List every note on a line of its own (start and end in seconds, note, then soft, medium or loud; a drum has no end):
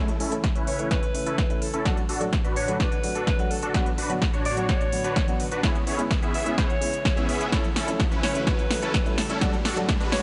0.00 1.84 C#3 medium
0.00 0.10 E3 medium
0.00 0.10 A3 medium
0.00 3.71 A3 medium
0.00 0.11 C#4 medium
0.00 0.11 E4 medium
0.00 1.84 E4 medium
0.00 3.71 A4 medium
0.00 riser medium
0.08 closed hi-hat soft
0.20 0.33 C#4 medium
0.20 0.33 E4 medium
0.20 0.33 A4 medium
0.20 open hi-hat medium
0.31 0.40 E3 medium
0.31 0.41 A3 medium
0.31 0.41 C#4 medium
0.31 0.41 E4 medium
0.31 closed hi-hat medium
0.44 kick loud
0.44 snare soft
0.44 closed hi-hat medium
0.56 0.88 C#4 medium
0.56 0.88 E4 medium
0.56 0.88 B4 medium
0.56 closed hi-hat soft
0.67 0.89 C#5 loud
0.67 open hi-hat medium
0.79 0.88 E3 medium
0.79 0.88 A3 medium
0.79 0.88 C#4 medium
0.79 0.88 E4 medium
0.79 closed hi-hat medium
0.91 1.04 C#4 medium
0.91 1.04 E4 medium
0.91 1.63 B4 loud
0.91 1.04 C#5 medium
0.91 kick loud
0.91 snare soft
0.91 closed hi-hat soft
1.03 closed hi-hat soft
1.14 1.23 E3 medium
1.14 1.23 A3 medium
1.14 1.23 C#4 medium
1.14 1.24 E4 medium
1.14 open hi-hat loud
1.26 1.39 C#4 medium
1.26 1.39 E4 medium
1.26 1.39 A4 medium
1.26 closed hi-hat soft
1.38 kick loud
1.38 snare medium
1.38 closed hi-hat medium
1.49 1.64 E3 medium
1.49 1.64 A3 medium
1.49 1.64 C#4 medium
1.49 1.64 E4 medium
1.49 closed hi-hat soft
1.62 1.85 A4 medium
1.62 open hi-hat medium
1.74 1.84 C#4 medium
1.74 1.84 E4 medium
1.74 1.84 A4 medium
1.74 closed hi-hat soft
1.85 3.73 A2 medium
1.85 5.60 D3 medium
1.85 1.99 F#3 medium
1.85 1.99 A3 medium
1.85 1.98 D4 medium
1.85 2.00 D4 medium
1.85 5.60 F#4 medium
1.85 2.00 F#4 loud
1.85 1.98 A4 loud
1.85 kick loud
1.85 snare soft
1.85 closed hi-hat soft
1.97 closed hi-hat soft
2.09 2.22 D4 medium
2.09 2.22 F#4 medium
2.09 2.22 A4 medium
2.09 open hi-hat loud
2.20 2.29 F#3 medium
2.20 2.30 A3 medium
2.20 2.30 D4 medium
2.20 2.30 F#4 medium
2.20 closed hi-hat soft
2.33 kick loud
2.33 snare soft
2.33 closed hi-hat soft
2.44 2.77 D4 medium
2.44 2.77 F#4 medium
2.44 2.77 B4 medium
2.44 closed hi-hat soft
2.56 2.73 C#5 loud
2.56 open hi-hat medium
2.68 2.77 F#3 medium
2.68 2.77 A3 medium
2.68 2.77 D4 medium
2.68 2.77 F#4 medium
2.68 closed hi-hat medium
2.73 2.81 C#5 medium
2.80 2.93 D4 medium
2.80 2.93 F#4 medium
2.80 3.52 B4 loud
2.80 kick loud
2.80 snare medium
2.80 closed hi-hat soft
2.92 closed hi-hat soft
3.03 3.12 F#3 medium
3.03 3.12 A3 medium
3.03 3.12 D4 medium
3.03 3.13 F#4 medium
3.03 open hi-hat loud
3.15 3.28 D4 medium
3.15 3.28 F#4 medium
3.15 3.28 A4 medium
3.15 closed hi-hat soft
3.27 kick loud
3.27 snare medium
3.27 closed hi-hat medium
3.38 3.53 F#3 medium
3.38 3.53 A3 medium
3.38 3.53 D4 medium
3.38 3.53 F#4 medium
3.38 closed hi-hat soft
3.51 3.75 A4 medium
3.51 open hi-hat medium
3.63 3.73 D4 medium
3.63 3.73 F#4 medium
3.63 3.73 A4 medium
3.63 closed hi-hat soft
3.74 5.62 A2 medium
3.74 3.88 F#3 medium
3.74 3.88 B3 medium
3.74 5.62 B3 medium
3.74 3.87 D4 medium
3.74 3.88 D4 medium
3.74 3.87 F#4 medium
3.74 3.89 F#4 loud
3.74 3.87 B4 medium
3.74 7.49 B4 medium
3.74 kick loud
3.74 snare medium
3.74 closed hi-hat soft
3.86 closed hi-hat soft
3.98 4.11 D4 medium
3.98 4.11 F#4 medium
3.98 4.11 B4 medium
3.98 open hi-hat loud
4.09 4.18 F#3 medium
4.09 4.19 B3 medium
4.09 4.19 D4 medium
4.09 4.19 F#4 medium
4.09 closed hi-hat medium
4.22 kick loud
4.22 snare medium
4.22 closed hi-hat soft
4.33 4.66 D4 medium
4.33 4.66 F#4 medium
4.33 4.66 C#5 medium
4.33 closed hi-hat soft
4.45 4.56 D5 loud
4.45 open hi-hat loud
4.56 4.66 F#3 medium
4.56 4.66 B3 medium
4.56 4.66 D4 medium
4.56 4.66 F#4 loud
4.56 closed hi-hat medium
4.69 5.41 C#5 loud
4.69 kick loud
4.69 snare medium
4.69 closed hi-hat soft
4.81 closed hi-hat soft
4.92 5.01 F#3 medium
4.92 5.01 B3 medium
4.92 5.01 D4 medium
4.92 5.02 F#4 medium
4.92 open hi-hat loud
5.04 5.17 D4 medium
5.04 5.17 F#4 medium
5.04 5.17 B4 medium
5.04 closed hi-hat medium
5.16 kick loud
5.16 snare medium
5.16 closed hi-hat medium
5.27 5.42 F#3 medium
5.27 5.42 B3 medium
5.27 5.42 D4 medium
5.27 5.42 F#4 loud
5.27 closed hi-hat soft
5.40 5.63 B4 medium
5.40 open hi-hat loud
5.52 5.62 D4 medium
5.52 5.62 F#4 medium
5.52 5.62 B4 medium
5.52 closed hi-hat soft
5.63 9.38 C#3 medium
5.63 5.77 G#3 medium
5.63 7.51 G#3 medium
5.63 5.77 B3 medium
5.63 5.76 B3 medium
5.63 5.76 C#4 medium
5.63 5.77 C#4 medium
5.63 7.51 E4 medium
5.63 5.76 E4 medium
5.63 5.78 E4 loud
5.63 5.76 G#4 medium
5.63 5.76 C#5 medium
5.63 kick loud
5.63 snare medium
5.63 closed hi-hat soft
5.75 closed hi-hat soft
5.87 6.00 B3 medium
5.87 6.00 C#4 medium
5.87 6.00 E4 medium
5.87 6.00 G#4 medium
5.87 6.00 C#5 medium
5.87 open hi-hat loud
5.98 6.07 G#3 medium
5.98 6.07 B3 medium
5.98 6.08 C#4 medium
5.98 6.08 E4 medium
5.98 closed hi-hat soft
6.11 kick loud
6.11 snare medium
6.11 closed hi-hat soft
6.22 6.55 B3 medium
6.22 6.55 C#4 medium
6.22 6.55 E4 medium
6.22 6.55 G#4 medium
6.22 6.55 E5 medium
6.22 closed hi-hat soft
6.34 6.56 E5 loud
6.34 open hi-hat loud
6.46 6.55 G#3 medium
6.46 6.55 B3 medium
6.46 6.55 C#4 medium
6.46 6.55 E4 medium
6.46 closed hi-hat medium
6.58 6.71 B3 medium
6.58 6.71 E4 medium
6.58 6.71 G#4 medium
6.58 7.30 C#5 loud
6.58 6.71 F#5 loud
6.58 kick loud
6.58 snare medium
6.58 closed hi-hat soft
6.70 closed hi-hat soft
6.81 6.90 G#3 medium
6.81 6.90 B3 medium
6.81 6.90 C#4 medium
6.81 6.91 E4 medium
6.81 open hi-hat loud
6.93 closed hi-hat soft
7.05 kick loud
7.05 snare medium
7.05 closed hi-hat soft
7.16 7.31 G#3 medium
7.16 7.31 B3 medium
7.16 7.50 B3 medium
7.16 7.50 C#4 medium
7.16 7.31 C#4 medium
7.16 7.50 E4 medium
7.16 7.31 E4 medium
7.16 7.50 G#4 medium
7.16 7.50 E5 medium
7.16 closed hi-hat soft
7.29 7.53 B4 medium
7.29 open hi-hat medium
7.41 closed hi-hat soft
7.52 7.66 E3 medium
7.52 7.66 A3 medium
7.52 10.22 A3 medium
7.52 7.65 C#4 medium
7.52 7.66 C#4 medium
7.52 9.39 E4 medium
7.52 7.65 E4 medium
7.52 7.67 E4 medium
7.52 7.65 A4 medium
7.52 10.22 A4 medium
7.52 kick loud
7.52 snare medium
7.52 closed hi-hat soft
7.64 closed hi-hat soft
7.76 7.89 C#4 medium
7.76 7.89 E4 medium
7.76 7.89 A4 medium
7.76 snare medium
7.76 open hi-hat loud
7.87 7.96 E3 medium
7.87 7.96 A3 medium
7.87 7.97 C#4 medium
7.87 7.97 E4 medium
7.87 closed hi-hat medium
8.00 kick loud
8.00 snare medium
8.00 closed hi-hat soft
8.11 8.44 C#4 medium
8.11 8.44 E4 medium
8.11 8.44 B4 medium
8.11 closed hi-hat soft
8.23 8.40 C#5 loud
8.23 snare medium
8.23 open hi-hat medium
8.34 8.43 E3 medium
8.34 8.44 A3 medium
8.34 8.44 C#4 medium
8.34 8.44 E4 loud
8.34 closed hi-hat medium
8.40 8.48 C#5 medium
8.47 8.60 C#4 medium
8.47 8.60 E4 medium
8.47 9.17 B4 loud
8.47 8.60 C#5 medium
8.47 kick loud
8.47 snare medium
8.47 closed hi-hat soft
8.59 closed hi-hat soft
8.70 8.79 E3 medium
8.70 8.79 A3 medium
8.70 8.79 C#4 medium
8.70 8.80 E4 medium
8.70 snare medium
8.70 open hi-hat loud
8.82 8.95 C#4 medium
8.82 8.95 E4 medium
8.82 8.95 A4 medium
8.82 closed hi-hat soft
8.94 kick loud
8.94 snare medium
8.94 closed hi-hat medium
9.05 9.20 E3 medium
9.05 9.20 A3 medium
9.05 9.20 C#4 medium
9.05 9.20 E4 medium
9.05 closed hi-hat soft
9.18 9.28 A4 medium
9.18 snare medium
9.18 open hi-hat medium
9.30 9.40 C#4 medium
9.30 9.40 E4 medium
9.30 9.40 A4 medium
9.30 closed hi-hat soft
9.41 10.22 A2 medium
9.41 10.22 D3 medium
9.41 9.55 F#3 medium
9.41 9.55 A3 medium
9.41 9.54 D4 medium
9.41 9.55 D4 medium
9.41 9.54 F#4 medium
9.41 10.22 F#4 medium
9.41 9.56 F#4 loud
9.41 9.54 A4 medium
9.41 kick loud
9.41 snare medium
9.41 closed hi-hat soft
9.53 closed hi-hat soft
9.65 9.78 D4 medium
9.65 9.78 F#4 medium
9.65 9.78 A4 medium
9.65 snare medium
9.65 open hi-hat loud
9.76 9.85 F#3 medium
9.76 9.85 A3 medium
9.76 9.86 D4 medium
9.76 9.86 F#4 loud
9.76 closed hi-hat soft
9.89 kick loud
9.89 snare medium
9.89 closed hi-hat medium
10.00 10.22 D4 medium
10.00 10.22 F#4 medium
10.00 10.22 B4 medium
10.00 closed hi-hat soft
10.12 10.22 C#5 loud
10.12 snare medium
10.12 open hi-hat medium